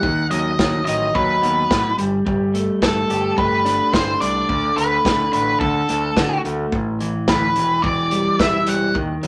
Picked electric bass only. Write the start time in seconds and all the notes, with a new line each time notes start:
0.04 D#2
0.32 D#2
0.60 D#2
0.88 A1
1.16 D#2
1.43 D#2
1.71 A2
2.00 G1
2.27 G1
2.82 G1
3.10 G1
3.38 G1
3.93 G1
4.20 C2
4.49 D2
4.77 D2
5.06 D2
5.34 A1
5.61 D2
5.89 D2
6.17 D3
6.45 D2
6.73 A1
7.28 D2
7.58 E1
7.84 E1
8.39 E1
8.68 E1
8.95 D#2
9.23 D#2